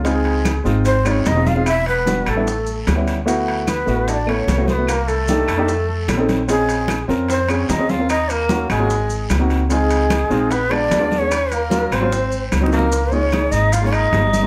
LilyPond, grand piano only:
\new Staff \with { instrumentName = "Grand piano" } { \time 4/4 \key bes \minor \tempo 4 = 149 <aes c' ees' f'>4 r8 <aes c' ees' f'>8. r16 <aes c' ees' f'>8 r16 <aes c' ees' f'>16 r16 <aes c' ees' aes'>16 | r4 <g b d' fis'>8 r16 <g b d' e'>16 r4 r16 <g b cis' e'>8 r16 | <a b e' fis'>4 r8 <a b e' fis'>8. r16 <a b e' a'>8 r16 <a b e' fis'>16 r16 <a b e' fis'>16 | r4 <bes d' ees' g'>8 r16 <bes d' ees' g'>16 r4 r16 <c' des' ees' a'>8 r16 |
<c' des' f' aes'>4 r8 <c' des' f' bes'>8. r16 <c' des' f' aes'>8 r16 <c' des' f' aes'>16 r16 <c' des' f' bes'>16 | r4 <bes des' f' ges'>8 r16 <bes des' f' ges'>16 r4 r16 <bes c' ees' ges'>8 r16 | <aes c' ees' f'>4 r8 <aes c' ees' f'>8 r8 <aes ces' d' f'>8 r16 <aes ces' d' f'>16 r16 <aes ces' d' aes'>16 | r4 <ges bes des' f'>8 r16 <ges bes des' f'>16 r4 r16 <ges bes c' ees'>8 r16 |
r8 <aes bes ees' f'>16 r16 <aes bes ees' aes'>4 r16 <aes bes ees' f'>4 r8 <aes bes ees' f'>16 | }